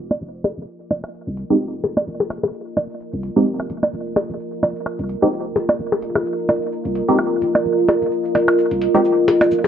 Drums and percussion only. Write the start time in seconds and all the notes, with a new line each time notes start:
0.11 percussion blips, cabasa
0.21 cabasa
0.34 cabasa
0.44 closed hi-hat, percussion blips
0.57 cabasa
0.68 cabasa
0.81 cabasa
0.91 closed hi-hat, percussion blips
1.04 cabasa, percussion blips
1.14 cabasa
1.27 closed hi-hat, cabasa
1.37 closed hi-hat
1.50 cabasa
1.61 cabasa
1.84 closed hi-hat, percussion blips
1.97 percussion blips, cabasa
2.07 cabasa
2.20 percussion blips, cabasa
2.30 closed hi-hat, percussion blips
2.43 percussion blips, cabasa
2.54 cabasa
2.67 cabasa
2.77 closed hi-hat, percussion blips
2.90 cabasa
3.00 cabasa
3.13 closed hi-hat, cabasa
3.23 closed hi-hat
3.36 cabasa
3.47 cabasa
3.60 percussion blips
3.70 closed hi-hat
3.83 percussion blips, cabasa
3.93 cabasa
4.06 cabasa
4.16 closed hi-hat, percussion blips
4.29 cabasa
4.40 cabasa
4.53 cabasa
4.63 closed hi-hat, percussion blips
4.76 cabasa
4.86 cabasa, percussion blips
4.99 closed hi-hat, cabasa
5.09 closed hi-hat
5.22 cabasa
5.33 cabasa
5.56 closed hi-hat, percussion blips
5.69 percussion blips, cabasa
5.79 cabasa
5.92 percussion blips, cabasa
6.02 closed hi-hat
6.15 percussion blips, cabasa
6.26 cabasa
6.39 cabasa
6.49 closed hi-hat, percussion blips
6.62 cabasa
6.72 cabasa
6.85 closed hi-hat, cabasa
6.95 closed hi-hat
7.08 cabasa
7.19 cabasa, percussion blips
7.42 closed hi-hat
7.55 percussion blips, cabasa
7.65 cabasa
7.78 cabasa
7.88 closed hi-hat, percussion blips
8.02 cabasa
8.12 cabasa
8.25 cabasa
8.35 closed hi-hat, percussion blips
8.48 cabasa, percussion blips
8.58 cabasa
8.71 closed hi-hat, cabasa
8.82 closed hi-hat
8.95 cabasa
9.05 cabasa
9.28 closed hi-hat, percussion blips
9.41 percussion blips, cabasa
9.51 cabasa
9.64 percussion blips, cabasa